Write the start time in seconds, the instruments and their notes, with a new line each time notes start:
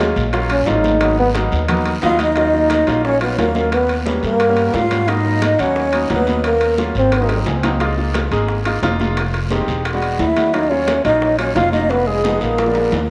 Already playing: upright bass D#2, trombone G#3
0.00 grand piano F#3 A#3 C#4 F4, high bongo, short guiro
0.16 upright bass A#1, high bongo, short guiro
0.33 grand piano F#3 A#3 C#4 F4, high bongo, high timbale, long guiro
0.50 trombone C#4, high bongo, high conga, high timbale
0.66 upright bass G#1, grand piano F#3 A#3 C#4 F4, trombone D#4, high bongo, low bongo, high conga, low timbale, short guiro
0.84 high bongo, high conga, short guiro
1.00 grand piano F#3 A#3 B3 D#4, high bongo, high conga, high timbale, long guiro
1.18 trombone B3, high conga
1.34 grand piano F#3 A#3 B3 D#4, high bongo, high conga, high timbale, low timbale, short guiro
1.52 upright bass D#2, high bongo, short guiro
1.68 grand piano F#3 A#3 B3 D#4, high bongo, high conga, low conga, high timbale, long guiro
1.85 high bongo, high conga, low conga, high timbale
2.02 upright bass D#2, grand piano F#3 A#3 B3 D#4, trombone F4, flute F5, high bongo, low bongo, high conga, low timbale, short guiro
2.19 trombone D#4, flute D#5, high bongo, high conga, high timbale, short guiro
2.36 grand piano F#3 A#3 C#4 F4, high bongo, high conga, high timbale, long guiro
2.53 grand piano F#3 A#3 C#4 F4, high bongo, high conga
2.70 high bongo, high conga, high timbale, low timbale, short guiro
2.87 upright bass A#1, grand piano F#3 A#3 C#4 F4, high bongo, high timbale, short guiro
3.05 trombone C#4, flute C#5, high bongo, high conga, long guiro
3.21 grand piano F#3 A#3 C#4 F4, trombone B3, flute B4, high conga, high timbale
3.38 upright bass D#2, grand piano F#3 A#3 C#4 F4, trombone A#3, flute A#4, high bongo, low bongo, high conga, high timbale, low timbale, short guiro
3.55 grand piano F#3 A#3 C#4 F4, high bongo, high conga, short guiro
3.72 trombone B3, flute B4, high bongo, high conga, high timbale, long guiro
3.89 high bongo, high conga, high timbale
4.06 grand piano G3 A#3 B3 C#4, high bongo, high conga, low timbale, short guiro
4.23 upright bass G2, trombone A#3, flute A#4, high bongo, high conga, short guiro
4.40 high bongo, high conga, high timbale, long guiro
4.48 grand piano G3 A#3 B3 C#4
4.57 high conga, high timbale
4.74 upright bass G#2, trombone F4, flute F5, high bongo, low bongo, high conga, low timbale, short guiro
4.91 grand piano G3 A#3 B3 C#4, high bongo, high conga, high timbale, short guiro
5.08 grand piano F#3 A#3 B3 D#4, trombone D#4, flute D#5, high bongo, high conga, high timbale, long guiro
5.25 grand piano F#3 A#3 B3 D#4, high bongo
5.42 high bongo, high conga, high timbale, low timbale, short guiro
5.59 upright bass D#2, grand piano F#3 A#3 B3 F#4, trombone C#4, flute C#5, high bongo, high timbale, short guiro
5.76 high bongo, high conga, long guiro
5.93 grand piano F#3 A#3 B3 D#4, high conga, high timbale
6.10 upright bass D#2, grand piano F#3 A#3 B3 D#4, trombone B3, flute B4, high bongo, low bongo, high conga, high timbale, low timbale, short guiro
6.27 grand piano F#3 A#3 B3 D#4, high bongo, high conga, short guiro
6.44 trombone A#3, flute A#4, high bongo, high conga, high timbale, long guiro
6.61 high bongo, high conga, high timbale
6.78 grand piano F#3 A#3 C#4 F4, high bongo, high conga, low timbale, short guiro
6.95 upright bass G#1, trombone C4, flute C5, high bongo, high conga, short guiro
7.12 high bongo, high conga, high timbale, long guiro
7.21 grand piano F#3 A#3 C4 D#4
7.29 high bongo, high conga, high timbale
7.46 upright bass C#2, grand piano G#5, low bongo, high conga, low timbale, short guiro
7.63 grand piano F#3 A#3 C4 D#4 F5, low bongo, high conga, high timbale, short guiro
7.80 grand piano G#3 A#3 D#4 F4, high bongo, high conga, high timbale, long guiro
7.97 grand piano G#3 A#3 D#4 F4, high bongo, high conga
8.14 high bongo, high conga, high timbale, low timbale, short guiro
8.31 upright bass G#1, grand piano G#3 A#3 D#4 G#4, high bongo, high timbale, short guiro
8.48 high bongo, high conga, long guiro
8.65 grand piano G#3 A#3 D#4 F4, high conga, high timbale
8.82 upright bass F1, grand piano G#3 A#3 D#4 F4, high bongo, low bongo, high conga, high timbale, low timbale, short guiro
9.00 grand piano G#3 A#3 D#4 F4, high bongo, high conga, short guiro
9.17 high bongo, high conga, high timbale, long guiro
9.33 high bongo, high conga, high timbale
9.51 grand piano G#3 C4 D#4 G4, high bongo, high conga, low timbale, short guiro
9.68 upright bass E1, high bongo, high conga, short guiro
9.85 high bongo, high conga, high timbale, long guiro
9.93 grand piano G#3 B3 D4 F#4
10.02 high conga, high timbale
10.19 upright bass D#2, trombone E4, flute E5, high bongo, low bongo, high conga, low timbale, short guiro
10.36 grand piano G#3 B3 D4 F#4, high bongo, high conga, high timbale, short guiro
10.53 grand piano F#3 A#3 C#4 F4, trombone D#4, flute D#5, high bongo, high conga, high timbale, long guiro
10.70 grand piano F#3 A#3 C#4 F4, trombone C#4, flute C#5, high bongo, high conga
10.88 high bongo, high conga, high timbale, low timbale, short guiro
11.04 upright bass A#1, grand piano F#3 A#3 C#4 F4, trombone D#4, flute D#5, high bongo, high timbale, short guiro
11.22 high bongo, high conga, long guiro
11.38 grand piano F#3 A#3 C#4 F4, trombone C#4, flute C#5, high conga, high timbale
11.56 upright bass F1, grand piano F#3 A#3 C#4 F4, trombone F4, flute F5, high bongo, low bongo, high conga, high timbale, low timbale, short guiro
11.72 grand piano F#3 A#3 C#4 F4, trombone D#4, flute D#5, high bongo, high conga, short guiro
11.90 trombone B3, flute B4, high bongo, high conga, high timbale, long guiro
12.07 trombone G#3, flute G#4, high bongo, high conga
12.24 grand piano F3 G#3 B3 D#4, high bongo, high conga, short guiro
12.41 upright bass A#1, trombone A#3, flute A#4, high bongo, high conga, short guiro
12.58 high bongo, high conga, low timbale, long guiro
12.66 grand piano F3 G#3 B3 D4
12.75 high conga, low timbale
12.92 upright bass D#2, high bongo, low bongo, high conga, low timbale, short guiro